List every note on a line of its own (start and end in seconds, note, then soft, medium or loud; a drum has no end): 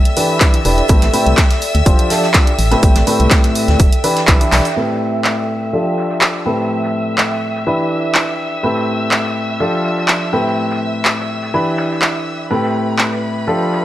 0.00 13.85 A4 medium
0.00 13.85 D5 medium
0.00 4.75 E5 medium
0.00 12.49 E5 medium
0.00 13.85 G5 medium
0.00 4.75 E6 medium
0.05 closed hi-hat medium
0.17 0.38 E3 medium
0.17 0.38 D4 medium
0.17 0.38 E4 medium
0.17 0.38 G4 medium
0.17 0.38 B4 medium
0.17 open hi-hat loud
0.17 shaker medium
0.40 0.56 E3 medium
0.40 0.56 D4 medium
0.40 0.56 E4 medium
0.40 0.56 B4 medium
0.40 kick loud
0.40 snare loud
0.40 clap loud
0.40 closed hi-hat medium
0.40 shaker medium
0.54 closed hi-hat soft
0.65 0.82 E1 medium
0.65 0.80 D4 medium
0.65 0.80 E4 medium
0.65 0.80 G4 medium
0.65 0.80 B4 medium
0.65 open hi-hat medium
0.65 shaker medium
0.78 closed hi-hat soft
0.89 0.98 A1 loud
0.89 1.04 A2 medium
0.89 1.04 C4 medium
0.89 1.04 G4 medium
0.89 1.04 A4 medium
0.89 1.04 B4 medium
0.89 kick loud
0.89 closed hi-hat medium
0.89 shaker medium
1.02 1.10 A1 loud
1.02 snare soft
1.02 closed hi-hat medium
1.13 1.36 A2 medium
1.13 1.36 C4 medium
1.13 1.36 G4 medium
1.13 1.36 A4 medium
1.13 1.36 B4 medium
1.13 open hi-hat loud
1.13 shaker medium
1.26 1.34 C2 medium
1.26 closed hi-hat soft
1.37 kick loud
1.37 snare loud
1.37 clap loud
1.37 closed hi-hat medium
1.37 shaker medium
1.51 snare soft
1.51 closed hi-hat medium
1.62 open hi-hat medium
1.62 shaker medium
1.75 1.82 D2 medium
1.75 closed hi-hat soft
1.86 1.95 F1 medium
1.86 2.07 F3 medium
1.86 2.07 D4 medium
1.86 2.07 F4 medium
1.86 2.07 G4 medium
1.86 2.07 C5 loud
1.86 kick loud
1.86 closed hi-hat medium
1.86 shaker medium
1.99 closed hi-hat medium
2.10 2.25 F3 medium
2.10 2.25 D4 medium
2.10 2.25 F4 medium
2.10 2.25 G4 medium
2.10 2.25 A4 medium
2.10 snare medium
2.10 open hi-hat loud
2.10 shaker medium
2.23 snare soft
2.34 2.49 D4 medium
2.34 2.49 F4 medium
2.34 2.49 G4 medium
2.34 2.49 D5 medium
2.34 kick loud
2.34 snare loud
2.34 clap loud
2.34 closed hi-hat medium
2.34 shaker medium
2.47 closed hi-hat soft
2.59 2.75 A1 medium
2.59 open hi-hat medium
2.59 shaker medium
2.71 2.81 A2 medium
2.71 2.81 C4 medium
2.71 2.81 G4 medium
2.71 2.81 A4 medium
2.71 2.81 B4 medium
2.71 snare soft
2.71 closed hi-hat soft
2.83 2.91 A1 loud
2.83 2.98 A2 medium
2.83 2.98 C4 medium
2.83 2.98 G4 medium
2.83 2.98 A4 medium
2.83 2.98 B4 medium
2.83 kick loud
2.83 closed hi-hat medium
2.83 shaker medium
2.96 3.03 A1 medium
2.96 snare medium
2.96 closed hi-hat medium
3.07 3.78 A2 loud
3.07 3.78 C4 medium
3.07 3.78 G4 medium
3.07 3.78 A4 medium
3.07 3.78 B4 loud
3.07 open hi-hat medium
3.07 shaker medium
3.20 3.27 C2 medium
3.20 closed hi-hat soft
3.31 kick loud
3.31 snare loud
3.31 clap loud
3.31 closed hi-hat medium
3.31 shaker medium
3.44 snare soft
3.44 closed hi-hat medium
3.55 open hi-hat medium
3.55 shaker medium
3.68 3.76 D2 medium
3.68 snare soft
3.68 closed hi-hat soft
3.80 3.88 E1 medium
3.80 kick loud
3.80 closed hi-hat medium
3.80 shaker medium
3.93 closed hi-hat medium
4.04 4.19 E3 medium
4.04 4.19 D4 medium
4.04 4.19 E4 medium
4.04 4.19 G4 medium
4.04 4.19 B4 loud
4.04 open hi-hat loud
4.04 shaker medium
4.17 snare soft
4.17 closed hi-hat soft
4.27 4.37 B1 medium
4.27 4.39 E3 medium
4.27 4.39 D4 medium
4.27 4.39 E4 medium
4.27 4.39 G4 medium
4.27 4.39 B4 medium
4.27 kick loud
4.27 clap loud
4.27 closed hi-hat medium
4.27 shaker medium
4.41 4.63 E3 medium
4.41 4.63 D4 medium
4.41 4.63 E4 medium
4.41 4.63 G4 medium
4.41 4.63 E5 medium
4.41 closed hi-hat medium
4.41 shaker medium
4.52 4.61 B1 loud
4.52 snare soft
4.52 clap medium
4.52 open hi-hat medium
4.65 closed hi-hat soft
4.65 shaker medium
4.76 5.71 A2 medium
4.76 5.71 C4 medium
4.76 5.71 G4 medium
4.76 5.71 A4 medium
4.76 5.71 B4 medium
4.76 12.52 E5 medium
4.76 12.52 E6 medium
4.89 snare soft
5.24 clap loud
5.38 snare soft
5.73 6.43 F3 medium
5.73 6.43 D4 medium
5.73 6.43 F4 medium
5.73 6.43 G4 medium
5.73 6.43 A4 medium
5.73 shaker medium
5.98 snare soft
5.98 shaker medium
6.10 snare soft
6.21 clap loud
6.46 7.64 A2 medium
6.46 7.64 C4 medium
6.46 7.64 G4 medium
6.46 7.64 A4 medium
6.46 7.64 B4 medium
6.59 snare soft
6.70 shaker medium
6.83 snare soft
6.95 shaker medium
7.18 clap loud
7.31 snare soft
7.56 snare soft
7.67 8.61 E3 medium
7.67 8.61 D4 medium
7.67 8.61 E4 medium
7.67 8.61 G4 medium
7.67 8.61 B4 medium
7.67 shaker medium
7.91 shaker medium
8.15 clap loud
8.52 closed hi-hat soft
8.63 9.58 A2 medium
8.63 9.58 C4 medium
8.63 9.58 G4 medium
8.63 9.58 A4 medium
8.63 9.58 B4 medium
8.63 shaker medium
8.76 snare soft
8.88 shaker medium
9.11 clap loud
9.24 snare soft
9.60 10.30 F3 medium
9.60 10.30 D4 medium
9.60 10.30 F4 medium
9.60 10.30 G4 medium
9.60 10.30 A4 medium
9.60 shaker medium
9.84 snare soft
9.97 snare soft
10.08 clap loud
10.33 11.51 A2 medium
10.33 11.51 C4 medium
10.33 11.51 G4 medium
10.33 11.51 A4 medium
10.33 11.51 B4 medium
10.46 snare soft
10.57 shaker medium
10.70 snare soft
11.05 clap loud
11.19 snare soft
11.43 snare soft
11.54 12.48 E3 medium
11.54 12.48 D4 medium
11.54 12.48 E4 medium
11.54 12.48 G4 medium
11.54 12.48 B4 medium
11.78 snare loud
11.78 shaker medium
11.91 snare soft
12.02 clap loud
12.26 shaker medium
12.39 closed hi-hat soft
12.50 13.45 A2 medium
12.50 13.45 C4 medium
12.50 13.45 G4 medium
12.50 13.45 A4 medium
12.50 13.45 B4 medium
12.50 13.85 B4 medium
12.50 13.85 E5 medium
12.50 13.85 B5 medium
12.50 shaker medium
12.63 snare soft
12.75 shaker medium
12.99 clap loud
13.12 snare soft
13.23 shaker medium
13.47 13.85 F3 medium
13.47 13.85 D4 medium
13.47 13.85 F4 medium
13.47 13.85 G4 medium
13.47 13.85 A4 medium
13.47 shaker medium
13.71 snare soft
13.71 shaker medium